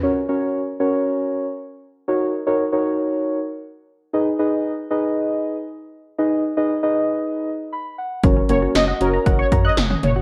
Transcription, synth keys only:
\new Staff \with { instrumentName = "Synth keys" } { \time 4/4 \key gis \minor \tempo 4 = 117 <cis' fis' ais' cis''>16 r16 <cis' fis' ais' cis''>8. r16 <cis' fis' ais' cis''>4~ <cis' fis' ais' cis''>16 r4 r16 | <dis' fis' ais' cis''>8 r16 <dis' fis' ais' cis''>16 r16 <dis' fis' ais' cis''>4~ <dis' fis' ais' cis''>16 r4. | <dis' gis' b' dis''>16 r16 <dis' gis' b' dis''>8. r16 <dis' gis' b' dis''>4~ <dis' gis' b' dis''>16 r4 r16 | <dis' gis' b' dis''>8 r16 <dis' gis' b' dis''>16 r16 <dis' gis' b' dis''>4~ <dis' gis' b' dis''>16 r8 b''8 fis''8 |
<cis' fis' ais' cis''>16 r16 <cis' fis' ais' cis''>8. r16 <cis' fis' ais' cis''>4~ <cis' fis' ais' cis''>16 r4 r16 | }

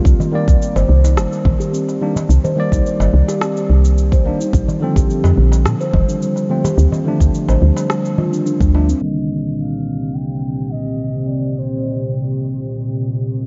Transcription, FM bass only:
\new Staff \with { instrumentName = "FM bass" } { \clef bass \time 4/4 \key c \dorian \tempo 4 = 107 c,16 r8 c,16 r16 g,,16 c,8 g,,16 r16 bes,,16 r4 r16 | c,16 r8 c,16 r16 g,,16 c,16 r8. c,4 r8 | bes,,16 r8 bes,,16 r16 f,16 bes,,8 bes,16 r16 f,,16 r4 r16 | d,16 r8 d,16 r16 a,,16 d,16 r4. d,8 r16 |
r1 | r1 | }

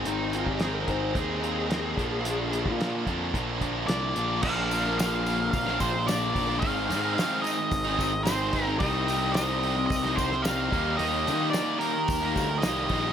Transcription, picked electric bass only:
\new Staff \with { instrumentName = "Picked electric bass" } { \clef bass \time 4/4 \key bes \mixolydian \tempo 4 = 110 aes,,8. aes,,8. aes,,8 ees,4. bes,,8~ | bes,,8. bes,8. f,8 bes,,4 c,8 bes,,8 | bes,,2 bes,,8 bes,,4 bes,,8 | aes,,8 aes,8 r4 aes,,8 aes,,4 aes,,8 |
c,2 c,8 c,4 ees,8 | ees,8 ees8 r4 ees,8 d,8 c,8 bes,,8 | }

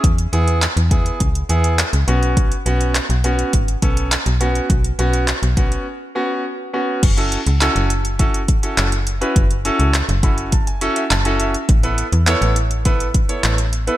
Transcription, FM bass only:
\new Staff \with { instrumentName = "FM bass" } { \clef bass \time 4/4 \key fis \dorian \tempo 4 = 103 e,8 e,8. e,8. cis,8 e,8. cis,16 b,,8~ | b,,8 b,,8. b,,8. gis,,8 b,,8. b,,8. | b,,8 b,,8. b,,8. r2 | fis,,8. cis,8 fis,,4.~ fis,,16 fis,,4 |
fis,,8. cis,8 fis,,4.~ fis,,16 fis,,4 | a,,8. e,8 a,,4.~ a,,16 a,,4 | }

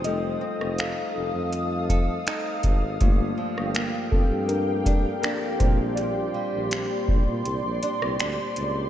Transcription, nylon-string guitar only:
\new Staff \with { instrumentName = "Nylon-string guitar" } { \time 4/4 \key bes \major \tempo 4 = 81 f8 c'8 ees'4. a'8 <c' ees' a'>4 | g,8 f8 bes4. d'8 <f bes d'>8 bes,8 | bes,8 g8 c'4. d'8 <g c' d'>4 | }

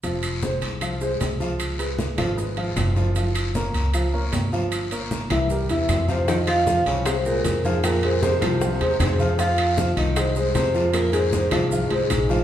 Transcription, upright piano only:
\new Staff \with { instrumentName = "Upright piano" } { \time 4/4 \key f \minor \tempo 4 = 154 <f f' f''>4 <aes aes' c''>4 <f f' f''>8 <aes aes' c''>4 <f f' f''>8~ | <f f' f''>8 <aes aes' ces''>4 <f f' f''>8 <aes aes' ces''>8 <f f' f''>4 <f f' f''>8 | <f f' f''>4 <bes bes' des''>4 <f f' f''>8 <bes bes' des''>4 <f f' f''>8~ | <f f' f''>8 <bes bes' des''>4 <e e' e''>8 <g g' bes'>8 <e e' e''>4 <f f' f''>8 |
<f f' f''>4 <f f' f''>4 <aes aes' c''>8 <aes aes' c''>4 <f f' f''>8~ | <f f' f''>8 <aes aes' c''>8 <aes aes' c''>8 <f f' f''>8 <f f' f''>8 <aes aes' c''>4 <f f' f''>8 | <f f' f''>4 <f f' f''>4 <aes aes' c''>8 <aes aes' c''>4 <f f' f''>8~ | <f f' f''>8 <aes aes' c''>8 <aes aes' c''>8 <f f' f''>8 <f f' f''>8 <aes aes' c''>4 <f f' f''>8 | }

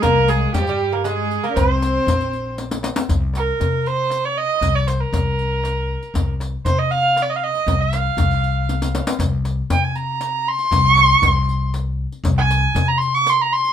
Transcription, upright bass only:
\new Staff \with { instrumentName = "Upright bass" } { \clef bass \time 3/4 \tempo 4 = 118 c,4 g,2 | c,4 bes,,2 | c,4 c2 | c,4 c,2 |
c,4 c2 | c,4 c,2 | c,4 c2 | c,4 c,2 |
c,4 c2 | }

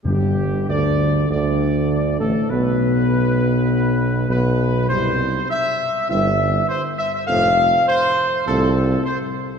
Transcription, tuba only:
\new Staff \with { instrumentName = "Tuba" } { \clef bass \time 4/4 \key g \major \tempo 4 = 100 g,,4 d,4 d,4. a,,8 | b,,2. b,,4 | c,4 r4 g,,4 r4 | f,,4 r4 c,4 r4 | }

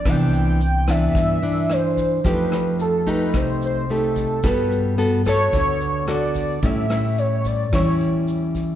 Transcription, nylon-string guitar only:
\new Staff \with { instrumentName = "Nylon-string guitar" } { \time 4/4 \key g \dorian \tempo 4 = 110 << { <e b d'>4 r8 <e b d'>4 <e d'>4. | <a ees' g'>4. <a ees' g'>4. <a ees' g'>4 | <b fis' a'>4 <b fis' a'>8 <b fis' a'>4. <b fis' a'>4 | <g cis' e'>8 <g cis' e'>4. <g cis' e'>2 | } \\ { c2 g,2 | f2 c2 | g2 d2 | a,2 e2 | } >> }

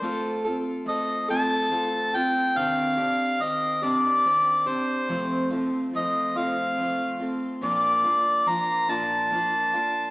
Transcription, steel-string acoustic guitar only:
\new Staff \with { instrumentName = "Steel-string acoustic guitar" } { \time 6/8 \key f \mixolydian \tempo 4. = 47 <a c' f' a'>8 <c' f' a'>8 <a c' f' a'>8 <a c' f' a'>8 <a c' f' a'>8 <c' f' a'>8 | <c ees c' d' g'>8 <c' d' g'>8 <ees c' g'>8 <c ees c' d' g'>8 <ees c' d' g'>8 <c' d' g'>8 | <f, c f a c' f'>8 <f a c' f'>8 <f a c' f'>8 <f, c f a c' f'>8 <f a c' f'>8 <f a c' f'>8 | <bes, f bes d' f'>8 <bes d' f'>8 <f bes d' f'>8 <bes, f bes d' f'>8 <f bes d' f'>8 <bes d' f'>8 | }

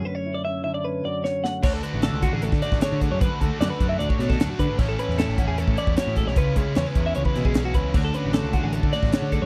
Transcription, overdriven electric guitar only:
\new Staff \with { instrumentName = "Overdriven electric guitar" } { \time 4/4 \key d \lydian \tempo 4 = 152 r1 | <d a d' fis'>8 <a d' fis'>8 <d a d' fis'>8 <a d' fis'>4 <a d' fis'>8 <d a d' fis'>4 | <d a d' fis'>8 <a d' fis'>8 <d a d' fis'>8 <a d' fis'>4 <a d' fis'>8 <d a d' fis'>4 | <a, e a cis' e'>8 <a cis' e'>8 <e a cis' e'>8 <a cis' e'>4 <a cis' e'>8 <a, e a cis' e'>4 |
<cis gis cis' e'>8 <gis cis' e'>8 <cis gis cis' e'>8 <gis cis' e'>4 <gis cis' e'>8 <cis gis cis' e'>4 | <d a d' fis'>8 <a d' fis'>8 <d a d' fis'>8 <a d' fis'>4 <a d' fis'>8 <d a d' fis'>4 | }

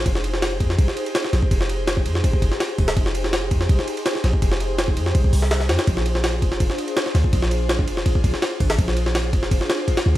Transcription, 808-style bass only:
\new Staff \with { instrumentName = "808-style bass" } { \clef bass \time 4/4 \key f \dorian \tempo 4 = 165 f,,4. f,8 c,8 r4 bes,,8 | f,,4. f,8 r8 f,,8 r8 ees,,8 | f,,4. f,8 c,8 r4 bes,,8 | f,,4. f,8 c,8 c,4 f,8 |
bes,,4. f,,8 f,,8 r4 d,8 | bes,,4. f,,8 r8 bes,,8 r8 aes,,8 | bes,,4. f,,8 f,,8 r4 d,8 | }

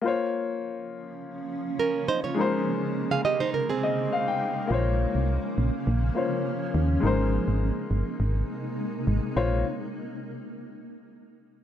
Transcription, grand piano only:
\new Staff \with { instrumentName = "Grand piano" } { \time 4/4 \key bes \minor \tempo 4 = 103 << { r1 | r2 r8 ees''8 f''16 g''8. | r1 | r1 |
r1 | } \\ { <bes f' c'' des''>1 | <aes ees' bes' c''>1 | <bes f' c'' des''>2~ <bes f' c'' des''>8 <bes f' c'' des''>4. | <aes ees' bes' c''>1 |
<bes f' c'' des''>8 r2. r8 | } >> }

